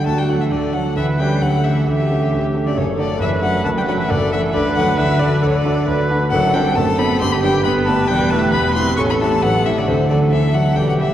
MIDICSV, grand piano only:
0, 0, Header, 1, 2, 480
1, 0, Start_track
1, 0, Tempo, 446429
1, 1044, Time_signature, 4, 2, 24, 8
1, 11976, End_track
2, 0, Start_track
2, 0, Title_t, "Grand piano"
2, 0, Program_c, 0, 0
2, 0, Control_c, 0, 64, 127
2, 0, Note_on_c, 0, 38, 38
2, 0, Note_on_c, 0, 50, 40
2, 0, Note_on_c, 0, 57, 30
2, 0, Note_on_c, 0, 62, 30
2, 0, Note_on_c, 0, 66, 31
2, 67, Note_off_c, 0, 38, 0
2, 67, Note_on_c, 0, 38, 37
2, 68, Note_off_c, 0, 50, 0
2, 68, Note_on_c, 0, 50, 39
2, 305, Note_off_c, 0, 38, 0
2, 305, Note_off_c, 0, 50, 0
2, 310, Note_off_c, 0, 57, 0
2, 310, Note_on_c, 0, 57, 31
2, 315, Note_off_c, 0, 62, 0
2, 315, Note_on_c, 0, 62, 35
2, 320, Note_off_c, 0, 66, 0
2, 320, Note_on_c, 0, 66, 35
2, 531, Note_off_c, 0, 57, 0
2, 534, Note_off_c, 0, 62, 0
2, 537, Note_off_c, 0, 66, 0
2, 551, Note_on_c, 0, 38, 39
2, 554, Note_on_c, 0, 50, 39
2, 791, Note_off_c, 0, 38, 0
2, 792, Note_off_c, 0, 50, 0
2, 799, Note_on_c, 0, 57, 30
2, 800, Note_on_c, 0, 62, 34
2, 808, Note_on_c, 0, 66, 35
2, 1018, Note_off_c, 0, 57, 0
2, 1019, Note_off_c, 0, 62, 0
2, 1023, Note_off_c, 0, 66, 0
2, 1036, Note_on_c, 0, 50, 39
2, 1040, Note_on_c, 0, 38, 46
2, 1062, Control_c, 0, 64, 0
2, 1237, Control_c, 0, 64, 127
2, 1273, Note_off_c, 0, 50, 0
2, 1276, Note_off_c, 0, 38, 0
2, 1284, Note_on_c, 0, 57, 37
2, 1289, Note_on_c, 0, 67, 37
2, 1290, Note_on_c, 0, 61, 34
2, 1501, Note_off_c, 0, 57, 0
2, 1504, Note_off_c, 0, 61, 0
2, 1504, Note_off_c, 0, 67, 0
2, 1525, Note_on_c, 0, 50, 43
2, 1526, Note_on_c, 0, 38, 42
2, 1759, Note_off_c, 0, 50, 0
2, 1760, Note_off_c, 0, 38, 0
2, 1764, Note_on_c, 0, 57, 32
2, 1765, Note_on_c, 0, 61, 33
2, 1775, Note_on_c, 0, 67, 36
2, 1983, Note_off_c, 0, 57, 0
2, 1983, Note_off_c, 0, 61, 0
2, 1989, Note_off_c, 0, 67, 0
2, 2006, Note_on_c, 0, 38, 39
2, 2007, Note_on_c, 0, 50, 40
2, 2242, Note_off_c, 0, 38, 0
2, 2243, Note_off_c, 0, 50, 0
2, 2258, Note_on_c, 0, 57, 36
2, 2262, Note_on_c, 0, 61, 35
2, 2264, Note_on_c, 0, 67, 39
2, 2472, Note_off_c, 0, 57, 0
2, 2474, Note_off_c, 0, 61, 0
2, 2475, Note_off_c, 0, 67, 0
2, 2496, Note_on_c, 0, 50, 43
2, 2502, Note_on_c, 0, 38, 42
2, 2727, Note_off_c, 0, 50, 0
2, 2730, Note_off_c, 0, 38, 0
2, 2736, Note_on_c, 0, 57, 35
2, 2736, Note_on_c, 0, 61, 39
2, 2741, Note_on_c, 0, 67, 42
2, 2949, Note_off_c, 0, 57, 0
2, 2949, Note_off_c, 0, 61, 0
2, 2952, Note_off_c, 0, 67, 0
2, 2979, Note_on_c, 0, 30, 45
2, 2979, Note_on_c, 0, 42, 48
2, 2993, Control_c, 0, 64, 0
2, 3164, Control_c, 0, 64, 127
2, 3206, Note_off_c, 0, 42, 0
2, 3207, Note_off_c, 0, 30, 0
2, 3211, Note_on_c, 0, 57, 36
2, 3216, Note_on_c, 0, 62, 41
2, 3218, Note_on_c, 0, 66, 42
2, 3425, Note_off_c, 0, 57, 0
2, 3428, Note_off_c, 0, 62, 0
2, 3428, Note_off_c, 0, 66, 0
2, 3438, Note_on_c, 0, 30, 48
2, 3445, Note_on_c, 0, 42, 44
2, 3674, Note_off_c, 0, 30, 0
2, 3678, Note_off_c, 0, 42, 0
2, 3690, Note_on_c, 0, 57, 35
2, 3697, Note_on_c, 0, 62, 39
2, 3701, Note_on_c, 0, 66, 42
2, 3904, Note_off_c, 0, 57, 0
2, 3908, Note_off_c, 0, 62, 0
2, 3910, Note_off_c, 0, 66, 0
2, 3922, Note_on_c, 0, 30, 42
2, 3923, Note_on_c, 0, 42, 45
2, 4158, Note_off_c, 0, 30, 0
2, 4158, Note_off_c, 0, 42, 0
2, 4173, Note_on_c, 0, 57, 39
2, 4177, Note_on_c, 0, 62, 40
2, 4179, Note_on_c, 0, 66, 48
2, 4388, Note_off_c, 0, 57, 0
2, 4390, Note_off_c, 0, 62, 0
2, 4391, Note_off_c, 0, 66, 0
2, 4408, Note_on_c, 0, 42, 48
2, 4410, Note_on_c, 0, 30, 50
2, 4642, Note_off_c, 0, 42, 0
2, 4643, Note_off_c, 0, 30, 0
2, 4646, Note_on_c, 0, 57, 44
2, 4652, Note_on_c, 0, 62, 46
2, 4656, Note_on_c, 0, 66, 47
2, 4863, Note_off_c, 0, 57, 0
2, 4866, Note_off_c, 0, 62, 0
2, 4868, Note_off_c, 0, 66, 0
2, 4884, Note_on_c, 0, 50, 52
2, 4890, Note_on_c, 0, 38, 60
2, 4909, Control_c, 0, 64, 0
2, 5108, Control_c, 0, 64, 127
2, 5117, Note_off_c, 0, 50, 0
2, 5120, Note_off_c, 0, 38, 0
2, 5123, Note_on_c, 0, 57, 42
2, 5126, Note_on_c, 0, 62, 44
2, 5131, Note_on_c, 0, 66, 46
2, 5338, Note_off_c, 0, 57, 0
2, 5339, Note_off_c, 0, 62, 0
2, 5342, Note_off_c, 0, 66, 0
2, 5354, Note_on_c, 0, 50, 52
2, 5355, Note_on_c, 0, 38, 57
2, 5588, Note_off_c, 0, 50, 0
2, 5589, Note_off_c, 0, 38, 0
2, 5600, Note_on_c, 0, 57, 43
2, 5605, Note_on_c, 0, 62, 40
2, 5609, Note_on_c, 0, 66, 48
2, 5814, Note_off_c, 0, 57, 0
2, 5817, Note_off_c, 0, 62, 0
2, 5819, Note_off_c, 0, 66, 0
2, 5836, Note_on_c, 0, 38, 47
2, 5840, Note_on_c, 0, 50, 52
2, 6068, Note_off_c, 0, 38, 0
2, 6070, Note_off_c, 0, 50, 0
2, 6075, Note_on_c, 0, 57, 42
2, 6078, Note_on_c, 0, 62, 45
2, 6078, Note_on_c, 0, 66, 52
2, 6289, Note_off_c, 0, 57, 0
2, 6290, Note_off_c, 0, 66, 0
2, 6291, Note_off_c, 0, 62, 0
2, 6312, Note_on_c, 0, 38, 56
2, 6314, Note_on_c, 0, 50, 56
2, 6543, Note_off_c, 0, 38, 0
2, 6544, Note_off_c, 0, 50, 0
2, 6557, Note_on_c, 0, 57, 47
2, 6562, Note_on_c, 0, 62, 47
2, 6566, Note_on_c, 0, 66, 51
2, 6769, Note_off_c, 0, 57, 0
2, 6772, Note_off_c, 0, 62, 0
2, 6774, Note_off_c, 0, 66, 0
2, 6791, Note_on_c, 0, 30, 56
2, 6794, Note_on_c, 0, 42, 59
2, 6809, Control_c, 0, 64, 0
2, 6968, Control_c, 0, 64, 127
2, 7023, Note_off_c, 0, 30, 0
2, 7024, Note_off_c, 0, 42, 0
2, 7037, Note_on_c, 0, 60, 48
2, 7039, Note_on_c, 0, 62, 44
2, 7044, Note_on_c, 0, 69, 48
2, 7249, Note_off_c, 0, 60, 0
2, 7250, Note_off_c, 0, 62, 0
2, 7253, Note_off_c, 0, 69, 0
2, 7271, Note_on_c, 0, 30, 53
2, 7271, Note_on_c, 0, 42, 52
2, 7501, Note_off_c, 0, 30, 0
2, 7501, Note_off_c, 0, 42, 0
2, 7509, Note_on_c, 0, 60, 44
2, 7512, Note_on_c, 0, 62, 46
2, 7520, Note_on_c, 0, 69, 50
2, 7722, Note_off_c, 0, 60, 0
2, 7724, Note_off_c, 0, 62, 0
2, 7728, Note_off_c, 0, 69, 0
2, 7756, Note_on_c, 0, 31, 55
2, 7756, Note_on_c, 0, 43, 57
2, 7765, Control_c, 0, 64, 0
2, 7934, Control_c, 0, 64, 127
2, 7981, Note_off_c, 0, 31, 0
2, 7981, Note_off_c, 0, 43, 0
2, 7989, Note_on_c, 0, 59, 45
2, 7989, Note_on_c, 0, 62, 46
2, 7996, Note_on_c, 0, 67, 49
2, 8201, Note_off_c, 0, 59, 0
2, 8201, Note_off_c, 0, 62, 0
2, 8204, Note_off_c, 0, 67, 0
2, 8223, Note_on_c, 0, 31, 52
2, 8226, Note_on_c, 0, 43, 52
2, 8455, Note_off_c, 0, 31, 0
2, 8456, Note_off_c, 0, 43, 0
2, 8473, Note_on_c, 0, 59, 45
2, 8479, Note_on_c, 0, 62, 45
2, 8483, Note_on_c, 0, 67, 49
2, 8684, Note_off_c, 0, 59, 0
2, 8687, Note_off_c, 0, 62, 0
2, 8689, Note_off_c, 0, 67, 0
2, 8712, Note_on_c, 0, 40, 60
2, 8714, Note_on_c, 0, 28, 56
2, 8720, Control_c, 0, 64, 0
2, 8918, Control_c, 0, 64, 127
2, 8938, Note_off_c, 0, 40, 0
2, 8939, Note_off_c, 0, 28, 0
2, 8947, Note_on_c, 0, 59, 43
2, 8951, Note_on_c, 0, 64, 45
2, 8957, Note_on_c, 0, 67, 48
2, 9158, Note_off_c, 0, 59, 0
2, 9160, Note_off_c, 0, 64, 0
2, 9163, Note_off_c, 0, 67, 0
2, 9172, Note_on_c, 0, 28, 53
2, 9176, Note_on_c, 0, 40, 50
2, 9406, Note_off_c, 0, 28, 0
2, 9408, Note_off_c, 0, 40, 0
2, 9413, Note_on_c, 0, 59, 43
2, 9418, Note_on_c, 0, 64, 39
2, 9418, Note_on_c, 0, 67, 45
2, 9630, Note_off_c, 0, 59, 0
2, 9633, Note_off_c, 0, 64, 0
2, 9633, Note_off_c, 0, 67, 0
2, 9652, Note_on_c, 0, 45, 51
2, 9654, Note_on_c, 0, 33, 52
2, 9675, Control_c, 0, 64, 0
2, 9864, Control_c, 0, 64, 127
2, 9886, Note_off_c, 0, 45, 0
2, 9887, Note_off_c, 0, 33, 0
2, 9901, Note_on_c, 0, 61, 44
2, 9909, Note_on_c, 0, 64, 44
2, 9913, Note_on_c, 0, 67, 49
2, 10114, Note_off_c, 0, 61, 0
2, 10119, Note_off_c, 0, 64, 0
2, 10121, Note_off_c, 0, 67, 0
2, 10138, Note_on_c, 0, 33, 49
2, 10145, Note_on_c, 0, 45, 50
2, 10370, Note_off_c, 0, 33, 0
2, 10374, Note_off_c, 0, 45, 0
2, 10380, Note_on_c, 0, 61, 43
2, 10383, Note_on_c, 0, 64, 43
2, 10392, Note_on_c, 0, 67, 44
2, 10595, Note_off_c, 0, 61, 0
2, 10596, Note_off_c, 0, 64, 0
2, 10601, Note_off_c, 0, 67, 0
2, 10622, Note_on_c, 0, 50, 49
2, 10624, Note_on_c, 0, 38, 58
2, 10637, Control_c, 0, 64, 0
2, 10808, Control_c, 0, 64, 127
2, 10852, Note_off_c, 0, 50, 0
2, 10853, Note_off_c, 0, 38, 0
2, 10870, Note_on_c, 0, 57, 41
2, 10870, Note_on_c, 0, 62, 38
2, 10878, Note_on_c, 0, 66, 43
2, 11081, Note_off_c, 0, 57, 0
2, 11081, Note_off_c, 0, 62, 0
2, 11085, Note_off_c, 0, 66, 0
2, 11110, Note_on_c, 0, 38, 45
2, 11112, Note_on_c, 0, 50, 45
2, 11338, Note_off_c, 0, 38, 0
2, 11339, Note_off_c, 0, 50, 0
2, 11345, Note_on_c, 0, 57, 37
2, 11349, Note_on_c, 0, 62, 32
2, 11354, Note_on_c, 0, 66, 39
2, 11560, Note_off_c, 0, 57, 0
2, 11562, Note_off_c, 0, 62, 0
2, 11565, Note_off_c, 0, 66, 0
2, 11580, Note_on_c, 0, 28, 38
2, 11580, Note_on_c, 0, 40, 45
2, 11602, Control_c, 0, 64, 0
2, 11767, Control_c, 0, 64, 127
2, 11817, Note_off_c, 0, 28, 0
2, 11817, Note_off_c, 0, 40, 0
2, 11826, Note_on_c, 0, 55, 36
2, 11831, Note_on_c, 0, 59, 33
2, 11837, Note_on_c, 0, 67, 37
2, 11976, Note_off_c, 0, 55, 0
2, 11976, Note_off_c, 0, 59, 0
2, 11976, Note_off_c, 0, 67, 0
2, 11976, End_track
0, 0, End_of_file